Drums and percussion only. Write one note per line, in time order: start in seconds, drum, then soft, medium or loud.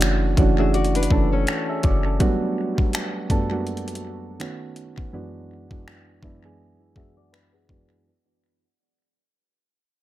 0.01 finger snap loud
0.01 closed hi-hat medium
0.37 kick medium
0.37 closed hi-hat medium
0.74 closed hi-hat soft
0.85 closed hi-hat soft
0.95 closed hi-hat medium
1.03 closed hi-hat medium
1.11 kick medium
1.47 finger snap medium
1.47 closed hi-hat medium
1.83 kick medium
1.83 closed hi-hat medium
2.20 kick loud
2.20 closed hi-hat medium
2.78 kick loud
2.93 finger snap loud
2.93 closed hi-hat medium
3.30 kick medium
3.30 closed hi-hat medium
3.67 closed hi-hat soft
3.77 closed hi-hat soft
3.88 closed hi-hat medium
3.95 closed hi-hat medium
4.40 finger snap loud
4.40 closed hi-hat medium
4.76 closed hi-hat medium
4.98 kick medium
5.71 kick medium
5.88 finger snap loud
6.23 kick medium
6.96 kick medium
7.34 finger snap loud
7.69 kick medium